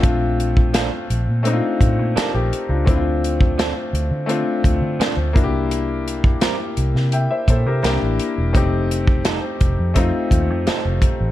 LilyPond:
<<
  \new Staff \with { instrumentName = "Grand piano" } { \time 4/4 \key bes \major \tempo 4 = 85 << { r2. <g' bes'>16 g'8 <d' f'>16~ | <d' f'>16 r2. r8. | r2 <e'' g''>16 <c'' e''>16 <a' c''>16 <g' bes'>8 r8. | r1 | } \\ { <a c' d' f'>2 <a c' d' ees' f'>2 | <a c' d' e' f'>2 <a c' d' f'>4. <bes d' e' ges' g'>8~ | <bes d' e' ges' g'>4. r4. <bes d' e' g'>4 | <a c' ees' g'>2 <a c' ees' f'>2 | } >> }
  \new Staff \with { instrumentName = "Clean electric guitar" } { \time 4/4 \key bes \major r4 <f bes d' a'>8 r4. <f bes d' a'>8 r8 | r4 <f c' d' a'>8 r4. <f c' d' a'>8 r8 | r4 <g c' e' bes'>8 r4. <g c' e' bes'>8 r8 | r4 <g c' ees' a'>8 r4. <g c' ees' a'>8 r8 | }
  \new Staff \with { instrumentName = "Fingered electric bass" } { \clef bass \time 4/4 \key bes \major bes,,4~ bes,,16 r16 bes,,16 bes,8 r16 a,16 bes,16 r16 bes,,16 r16 des,16 | d,4~ d,16 r16 d,16 d8 r16 d,16 d16 r16 d,16 c,8~ | c,4~ c,16 r16 c,16 c8 r16 bes,16 c16 c,16 a,,16 r16 e,,16 | f,,4~ f,,16 r16 f,,16 f,8 r16 ees,16 f,16 r16 f,,16 r16 a,,16 | }
  \new DrumStaff \with { instrumentName = "Drums" } \drummode { \time 4/4 <hh bd>8 hh16 bd16 <hh sn>8 hh8 hh8 <hh bd>8 <hh sn>8 hh8 | <hh bd>8 hh16 bd16 <hh sn>8 hh8 hh8 <hh bd>8 <hh sn>8 <hh bd>8 | hh8 hh16 bd16 <hh sn>8 hh16 sn16 hh8 <hh bd>8 <hh sn>8 hh8 | <hh bd>8 hh16 bd16 <hh sn>8 <hh bd>8 <hh bd>8 <hh bd>8 <hh sn>8 <hh bd>8 | }
>>